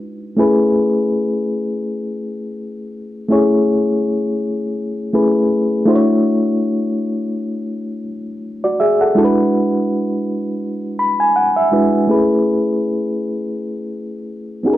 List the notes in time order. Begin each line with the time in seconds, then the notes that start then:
Already playing: G#3 D#4 E4 F#4 B4
0.37 A3 C#4 E4 G#4 B4
3.28 A3 C#4 E4 G#4 C#5
5.13 A3 C#4 E4 G#4 B4
5.85 A3 D4 E4 F#4 C5
5.95 C#5
8.64 F#4 D5
8.80 G#4 E5
9.01 A4 F#5
9.15 G#3 D4 E4 F#4 A4
9.24 B4
10.99 B5
11.20 G#5
11.36 F#5
11.56 E5
11.72 G#3 D4 E4 F#4 B4
12.07 A3 C#4 E4 G#4 B4
14.63 B3 C#4 D#4 F#4 G#4
14.73 A#4